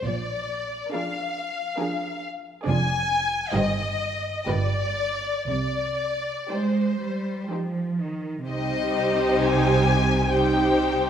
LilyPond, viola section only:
\new Staff \with { instrumentName = "Viola section" } { \time 3/4 \key bes \mixolydian \tempo 4 = 66 r4 <f d'>4 <f d'>4 | \key c \minor <f d'>4 <ees ees'>4 <g f'>4 | r4 <g ees'>4 <g ees'>4 | <g ees'>2 <g ees'>4 | }